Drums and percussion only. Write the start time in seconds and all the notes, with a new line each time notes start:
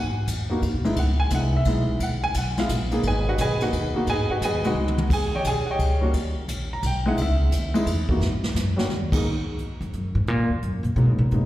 0.27 kick, hi-hat pedal, ride
0.62 kick, ride
0.85 ride
0.96 kick, ride
1.30 kick, hi-hat pedal, ride
1.65 kick, ride
2.00 kick, ride
2.34 kick, hi-hat pedal, ride
2.57 snare, ride
2.69 kick, hi-hat pedal, ride
2.91 ride
3.03 kick, ride
3.38 kick, hi-hat pedal, ride
3.60 ride
3.73 kick, ride
4.07 kick, ride
4.42 kick, hi-hat pedal, ride
4.64 ride
4.88 mid tom
4.98 mid tom
5.10 kick, crash
5.44 kick, hi-hat pedal, ride
5.79 kick, ride
6.13 kick, ride
6.48 kick, hi-hat pedal, ride
6.83 kick, ride
7.17 kick, ride
7.52 kick, hi-hat pedal, ride
7.75 ride
7.86 kick, ride
8.09 kick
8.21 snare
8.44 snare
8.56 snare, hi-hat pedal
8.79 snare
8.90 snare
9.12 kick, crash
9.59 closed hi-hat
9.81 closed hi-hat
9.93 closed hi-hat
10.27 closed hi-hat
10.62 closed hi-hat
10.84 closed hi-hat
10.96 closed hi-hat
11.31 closed hi-hat